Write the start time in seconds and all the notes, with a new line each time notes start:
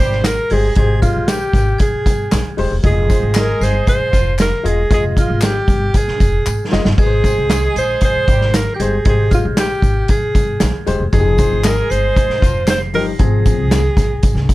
Already playing: C5 C7
0.00 G#1 G3 G4, tambourine
0.12 snare
0.24 A#4 A#6, snare, clap, closed hi-hat, tambourine
0.50 G1 G#3 G4 G#4 C5 G#6, open hi-hat
0.75 G#1 G#3 G4 G#4 C5 G#6, kick, closed hi-hat
1.02 F4 F6, kick, closed hi-hat, tambourine
1.16 A#1
1.28 G4 G6, snare, clap, closed hi-hat, tambourine
1.53 G#1, kick, snare, closed hi-hat, tambourine
1.78 G#4 G#6, kick, closed hi-hat, tambourine
1.94 muted upright bass stroke
2.06 G1, kick, closed hi-hat, tambourine
2.32 A#1, snare, clap, closed hi-hat, tambourine
2.57 D#1 G#3 G4 C5, open hi-hat
2.71 E1
2.83 F1 G#3 F4 G#4 D#5 G#6, kick, closed hi-hat
3.09 C4 C5, kick, closed hi-hat, tambourine
3.23 G#1
3.33 G#3 G#4 A#6, snare, clap, closed hi-hat, tambourine
3.38 A#4
3.60 G1 C5 C7, snare, closed hi-hat, tambourine
3.87 C5 C7, kick, closed hi-hat, tambourine
4.00 muted upright bass stroke
4.11 F1 F3 F4, kick, closed hi-hat, tambourine
4.38 A#4 A#6, snare, clap, closed hi-hat, tambourine
4.63 E1 G#3 F4 D#5 G#6, closed hi-hat
4.68 G#4
4.90 F1 G#3 F4 G#4 D#5 G#6, kick, closed hi-hat, tambourine
5.17 F4 F6, kick, closed hi-hat, tambourine
5.29 G#1
5.41 G4 G6, snare, clap, closed hi-hat, tambourine
5.68 G1, kick, closed hi-hat, tambourine
5.94 G#4 G#6, kick, closed hi-hat, tambourine
6.08 muted upright bass stroke, snare
6.20 F1, kick, closed hi-hat, tambourine
6.46 G#1, clap, tambourine
6.71 F#1 G#3 F4 D#5, snare, tambourine
6.85 G1, snare
6.98 G#1 G#3 G#4 B4 G#6, kick, tambourine, splash
7.06 C5
7.24 C4 C5, kick, closed hi-hat, tambourine
7.37 C2
7.50 G#3 G#4, snare, clap, closed hi-hat, tambourine
7.76 A#1 C5 C7, closed hi-hat, tambourine
8.01 C5 C7, kick, closed hi-hat, tambourine
8.16 muted upright bass stroke
8.27 G#1 G3 G4, kick, closed hi-hat, tambourine
8.41 snare
8.54 A#4 A#6, snare, clap, closed hi-hat, tambourine
8.74 G4 G6
8.80 G1 G#3 G4 G#4 C5 G#6, closed hi-hat, tambourine
9.05 G#1 G#3 G4 G#4 C5 G#6, kick, closed hi-hat
9.31 F4 F6, kick, closed hi-hat, tambourine
9.45 A#1
9.57 G4 G6, snare, clap, closed hi-hat, tambourine
9.82 G#1, kick, closed hi-hat, tambourine
10.08 G#4 G#6, kick, closed hi-hat, tambourine
10.22 muted upright bass stroke
10.35 G1, kick, closed hi-hat, tambourine
10.60 A#1, snare, clap, closed hi-hat, tambourine
10.86 D#1 G#3 G4 C5, closed hi-hat, tambourine
11.00 E1
11.12 F1 F3 D#4 G4 G#4 G#6, kick, closed hi-hat, tambourine
11.20 G#4
11.38 C4 C5, kick, closed hi-hat, tambourine
11.52 G#1
11.63 G#3 G#4 A#4 A#6, snare, clap, closed hi-hat, tambourine
11.90 G1 C5 C7, closed hi-hat, tambourine
12.16 kick, closed hi-hat, tambourine
12.28 muted upright bass stroke, snare
12.41 F1 F3 F4, kick, closed hi-hat, tambourine
12.67 C5 C7, snare, clap, closed hi-hat, tambourine
12.94 G1 F3 D#4 G4 A#4 A#6, open hi-hat
13.19 G#1 F3 C4 G#4 G#6, kick, closed hi-hat, tambourine
13.46 kick, closed hi-hat, tambourine
13.58 C2
13.71 snare, clap, closed hi-hat, tambourine
13.97 A#1, kick, snare, closed hi-hat, tambourine
14.23 G#1, kick, closed hi-hat, tambourine
14.35 C2, snare
14.49 kick, closed hi-hat, tambourine